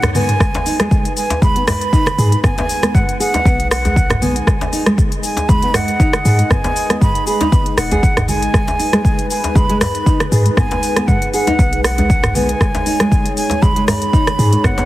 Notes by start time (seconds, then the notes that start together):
Already playing: G#3 D#4 G#4 C#5 F#5
0.02 cross-stick, closed hi-hat, mid tom, muted conga, djembe tone, shaker
0.15 B3 G#5, mid tom, open hi-hat, high conga, low conga, shaker
0.29 closed hi-hat, mid tom, shaker
0.40 G#1 G#3 D#4 G#4 B4, kick, cross-stick, shaker
0.54 closed hi-hat, muted conga, djembe slap, shaker
0.66 D#4, open hi-hat, shaker
0.80 G#3, cross-stick, closed hi-hat, high conga, shaker
0.91 G#3, kick, muted conga, shaker
1.05 closed hi-hat, shaker
1.17 G#5, open hi-hat, shaker
1.30 closed hi-hat, djembe slap, muted conga, shaker
1.42 G#3 B5, kick, djembe tone, high conga, shaker
1.56 B3, closed hi-hat
1.67 B5, cross-stick, mid tom, open hi-hat, djembe slap, muted conga, high conga, shaker
1.81 closed hi-hat, shaker
1.93 D#4, kick, shaker
2.06 cross-stick, closed hi-hat, muted conga, low conga, shaker
2.18 G#2 G#4, mid tom, open hi-hat, shaker
2.32 closed hi-hat, high conga, shaker
2.44 G#1 B3 G#5, kick, cross-stick, mid tom, shaker
2.58 B3, closed hi-hat, muted conga, djembe slap, shaker
2.69 open hi-hat, shaker
2.83 B3, cross-stick, closed hi-hat, high conga, shaker
2.95 G#3 F#5, kick, mid tom, muted conga, shaker
3.09 closed hi-hat, shaker
3.20 G#4 F#5, open hi-hat, shaker
3.34 D#4, closed hi-hat, muted conga, djembe slap, shaker
3.45 B1 B3, kick, high conga, shaker
3.60 closed hi-hat
3.71 F#5, cross-stick, open hi-hat, muted conga, shaker
3.85 G#3, closed hi-hat, djembe tone, high conga, shaker
3.96 kick, low conga, shaker
4.10 cross-stick, closed hi-hat, mid tom, muted conga, djembe tone, shaker
4.22 B3 G#5, open hi-hat, high conga, low conga, shaker
4.36 closed hi-hat, shaker
4.47 G#1 G#3 D#5, kick, cross-stick, shaker
4.61 closed hi-hat, djembe slap, muted conga, shaker
4.73 D#4, open hi-hat, shaker
4.86 G#3, cross-stick, closed hi-hat, high conga, shaker
4.98 G#3, kick, muted conga, shaker
5.12 closed hi-hat, shaker
5.23 G#5, open hi-hat, shaker
5.37 closed hi-hat, djembe slap, muted conga, shaker
5.49 G#3 B5, kick, djembe tone, high conga, shaker
5.62 B3, closed hi-hat
5.74 F#5, cross-stick, mid tom, open hi-hat, muted conga, djembe slap, high conga, shaker
5.88 closed hi-hat, shaker
6.00 D#4, kick, shaker
6.13 cross-stick, closed hi-hat, muted conga, low conga, shaker
6.25 G#2 G#4, mid tom, open hi-hat, shaker
6.39 closed hi-hat, high conga, shaker
6.50 G#1 B3 G#5, kick, cross-stick, mid tom, djembe tone, shaker
6.64 B3, closed hi-hat, djembe slap, muted conga, shaker
6.76 open hi-hat, shaker
6.90 B3, cross-stick, closed hi-hat, high conga, shaker
7.01 G#3 B5, kick, mid tom, muted conga, shaker
7.15 closed hi-hat, shaker
7.27 G#4 B5, open hi-hat, shaker
7.41 D#4, closed hi-hat, djembe slap, muted conga, shaker
7.52 B3, kick, high conga, shaker
7.66 closed hi-hat
7.77 D#1 F#5, cross-stick, open hi-hat, muted conga, shaker
7.91 G#1 G#4, closed hi-hat, high conga, djembe tone, shaker
8.03 kick, low conga, shaker
8.17 cross-stick, closed hi-hat, mid tom, muted conga, djembe tone, shaker
8.28 G#4 G#5, open hi-hat, high conga, low conga, shaker
8.42 closed hi-hat, shaker
8.54 G#1 G#3 B4, kick, cross-stick, shaker
8.67 closed hi-hat, muted conga, djembe slap, shaker
8.79 D#4, open hi-hat, shaker
8.93 G#3, cross-stick, closed hi-hat, high conga, shaker
9.05 G#3, kick, muted conga, shaker
9.19 closed hi-hat, shaker
9.30 G#5, open hi-hat, shaker
9.44 closed hi-hat, muted conga, djembe slap, shaker
9.55 G#3 B5, kick, djembe tone, high conga, shaker
9.69 G#3, closed hi-hat
9.81 B5, cross-stick, mid tom, open hi-hat, muted conga, djembe slap, high conga, shaker
9.95 closed hi-hat, shaker
10.06 D#4, kick, shaker
10.20 cross-stick, closed hi-hat, muted conga, low conga, shaker
10.32 G#2 G#4, mid tom, open hi-hat, shaker
10.46 closed hi-hat, high conga, shaker
10.57 G#1 B3 G#5, kick, cross-stick, mid tom, shaker
10.71 B3, closed hi-hat, muted conga, djembe slap, shaker
10.83 open hi-hat, shaker
10.96 B3, cross-stick, closed hi-hat, high conga, shaker
11.07 G#3 F#5, kick, mid tom, muted conga, shaker
11.22 closed hi-hat, shaker
11.33 G#4 F#5, open hi-hat, shaker
11.47 D#4, closed hi-hat, muted conga, djembe slap, shaker
11.59 B1 B3, kick, high conga, shaker
11.73 closed hi-hat
11.84 F#5, cross-stick, open hi-hat, muted conga, shaker
11.98 G#3, closed hi-hat, djembe tone, high conga, shaker
12.10 kick, low conga, shaker
12.23 cross-stick, closed hi-hat, mid tom, muted conga, djembe tone, shaker
12.35 B3 G#5, open hi-hat, high conga, low conga, shaker
12.49 closed hi-hat, shaker
12.61 G#1 G#3 C#5, kick, cross-stick, shaker
12.75 closed hi-hat, djembe slap, muted conga, shaker
12.86 D#4, open hi-hat, shaker
13.00 G#3, cross-stick, closed hi-hat, high conga, shaker
13.12 G#3, kick, muted conga, shaker
13.26 closed hi-hat, shaker
13.36 G#5, open hi-hat, shaker
13.50 closed hi-hat, djembe slap, muted conga, shaker
13.62 G#3 B5, kick, high conga, djembe tone, shaker
13.76 G#3, closed hi-hat
13.88 B5, cross-stick, mid tom, open hi-hat, muted conga, djembe slap, high conga, shaker
14.02 closed hi-hat, shaker
14.13 D#4, kick, shaker
14.27 cross-stick, closed hi-hat, muted conga, low conga, shaker
14.39 G#2 G#4, mid tom, open hi-hat, shaker
14.53 closed hi-hat, high conga, shaker
14.64 G#1 B3 F#5, kick, cross-stick, mid tom, djembe tone, shaker
14.78 B3, closed hi-hat, djembe slap, muted conga, shaker